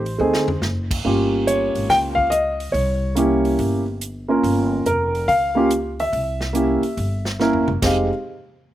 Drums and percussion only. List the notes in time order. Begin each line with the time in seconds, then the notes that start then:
0.06 open hi-hat
0.34 snare
0.48 floor tom
0.62 snare
0.91 kick, crash
1.05 kick
1.48 closed hi-hat
1.75 open hi-hat
1.89 kick, snare, open hi-hat
2.18 kick
2.32 closed hi-hat
2.60 open hi-hat
2.74 kick, open hi-hat
3.16 closed hi-hat
3.45 open hi-hat
3.59 kick, open hi-hat
4.01 closed hi-hat
4.43 kick, open hi-hat
4.86 closed hi-hat
5.15 open hi-hat
5.28 kick, open hi-hat
5.71 closed hi-hat
6.00 open hi-hat
6.13 kick, open hi-hat
6.41 snare
6.55 closed hi-hat
6.83 open hi-hat
6.97 kick, open hi-hat
7.25 snare
7.40 snare
7.53 floor tom
7.68 mid tom
7.82 kick, snare, crash